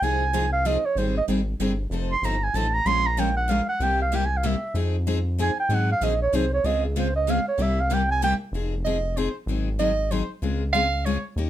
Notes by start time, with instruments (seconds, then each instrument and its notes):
0.02 analog synth bass C2, steel-string acoustic guitar F3 C4 D#4 G#4, clarinet G#5
0.33 steel-string acoustic guitar F3 C4 D#4 G#4
0.53 clarinet F5
0.65 steel-string acoustic guitar F3 C4 D#4 G#4, clarinet D#5
0.85 clarinet C#5
0.95 analog synth bass G#1, steel-string acoustic guitar D#3 G3 C4 D#4 G#4, clarinet C5
1.17 clarinet D#5
1.28 analog synth bass G#1, steel-string acoustic guitar D#3 G3 C4 D#4 G#4
1.59 analog synth bass G1, steel-string acoustic guitar D#3 G3 C4 D#4 G#4
1.90 analog synth bass F1, steel-string acoustic guitar F3 C4 D#4 A4
2.12 clarinet C6
2.22 analog synth bass G1, steel-string acoustic guitar F3 C4 D#4 A4, clarinet A#5
2.43 clarinet G#5
2.54 analog synth bass A1, steel-string acoustic guitar F3 C4 D#4 A4, clarinet A5
2.74 clarinet A#5
2.85 analog synth bass A#1, steel-string acoustic guitar F3 G#3 C#4 F4 A#4, clarinet C6
3.06 clarinet A#5
3.17 steel-string acoustic guitar F3 G#3 C#4 F4 A#4, clarinet G5
3.37 clarinet F#5
3.48 steel-string acoustic guitar F3 G#3 C#4 F4 A#4, clarinet F5
3.69 clarinet F#5
3.80 analog synth bass C2, steel-string acoustic guitar C3 G3 A#3 E4 G4, clarinet G5
4.02 clarinet F5
4.12 steel-string acoustic guitar C3 G3 A#3 E4 G4, clarinet G5
4.26 clarinet G#5
4.37 clarinet F5
4.43 steel-string acoustic guitar C3 G3 A#3 E4 G4, clarinet E5
4.74 analog synth bass F2, steel-string acoustic guitar F3 C4 D#4 G#4
5.07 steel-string acoustic guitar F3 C4 D#4 G#4
5.38 steel-string acoustic guitar F3 C4 D#4 G#4, clarinet G#5
5.60 clarinet G5
5.69 analog synth bass G#2, steel-string acoustic guitar D#3 F#3 C4 D#4 G#4
5.74 clarinet F#5
5.92 clarinet F5
6.01 analog synth bass A#1, steel-string acoustic guitar D#3 F#3 C4 D#4 G#4, clarinet D#5
6.22 clarinet C#5
6.33 analog synth bass C2, steel-string acoustic guitar D#3 F#3 C4 D#4 G#4, clarinet C5
6.53 clarinet C#5
6.64 analog synth bass C#2, steel-string acoustic guitar C#3 G#3 C4 F4 G#4, clarinet D#5
6.85 clarinet G#4
6.96 steel-string acoustic guitar C#3 G#3 C4 F4 G#4, clarinet C5
7.16 clarinet D#5
7.28 steel-string acoustic guitar C#3 G#3 C4 F4 G#4, clarinet F5
7.48 clarinet C#5
7.58 analog synth bass C2, steel-string acoustic guitar C3 G3 A#3 E4 G4
7.62 clarinet E5
7.81 clarinet F5
7.90 steel-string acoustic guitar C3 G3 A#3 E4 G4, clarinet G5
8.11 clarinet G#5
8.22 steel-string acoustic guitar C3 G3 A#3 E4 G4, clarinet G5
8.52 analog synth bass F1, steel-string acoustic guitar F3 C4 D#4 G#4
8.85 steel-string acoustic guitar F3 C4 D#4 G#4, soprano saxophone D#5
9.17 steel-string acoustic guitar F3 C4 D#4 G#4, soprano saxophone C5
9.46 analog synth bass G#1, steel-string acoustic guitar D#3 F#3 C4 D#4 G#4
9.79 steel-string acoustic guitar D#3 F#3 C4 D#4 G#4, soprano saxophone D#5
10.11 steel-string acoustic guitar D#3 F#3 C4 D#4 G#4, soprano saxophone C5
10.42 analog synth bass C#2, steel-string acoustic guitar C#3 G#3 C4 F4 G#4
10.73 steel-string acoustic guitar C#3 G#3 C4 F4 G#4, soprano saxophone F5
11.05 steel-string acoustic guitar C#3 G#3 C4 F4 G#4, soprano saxophone C#5
11.36 analog synth bass D#2, steel-string acoustic guitar D#3 A#3 C#4 G4 A#4